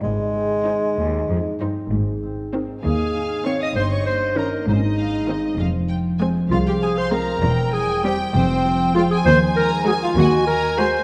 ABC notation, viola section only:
X:1
M:6/8
L:1/8
Q:3/8=65
K:Ab
V:1 name="Viola section"
z2 E z2 E | z2 [E,C] z2 [E,C] | z2 [E,D] z2 [E,C] | z2 [A,C] z2 [A,C] |
z2 [G,C] z2 [A,F] | [K:Abmix] z2 [A,G] z2 [A,G] |]